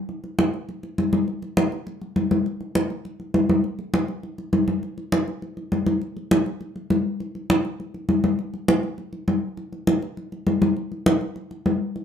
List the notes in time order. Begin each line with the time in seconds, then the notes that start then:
0.09 high conga
0.24 high conga
0.39 high conga
0.54 high conga
0.69 high conga
0.83 high conga
0.98 high conga
1.13 high conga
1.28 high conga
1.42 high conga
1.57 high conga
1.72 high conga
1.87 high conga
2.02 high conga
2.16 high conga
2.31 high conga
2.46 high conga
2.61 high conga
2.75 high conga
2.90 high conga
3.05 high conga
3.20 high conga
3.34 high conga
3.49 high conga
3.64 high conga
3.79 high conga
3.94 high conga
4.08 high conga
4.23 high conga
4.38 high conga
4.53 high conga
4.68 high conga
4.83 high conga
4.98 high conga
5.12 high conga
5.28 high conga
5.42 high conga
5.57 high conga
5.72 high conga
5.86 high conga
6.02 high conga
6.17 high conga
6.31 high conga
6.46 high conga
6.61 high conga
6.76 high conga
6.90 high conga
7.20 high conga
7.35 high conga
7.50 high conga
7.65 high conga
7.80 high conga
7.94 high conga
8.09 high conga
8.24 high conga
8.39 high conga
8.54 high conga
8.68 high conga
8.83 high conga
8.98 high conga
9.13 high conga
9.28 high conga
9.57 high conga
9.72 high conga
9.87 high conga
10.02 high conga
10.17 high conga
10.32 high conga
10.47 high conga
10.62 high conga
10.77 high conga
10.92 high conga
11.06 high conga
11.21 high conga
11.36 high conga
11.51 high conga
11.66 high conga
11.96 high conga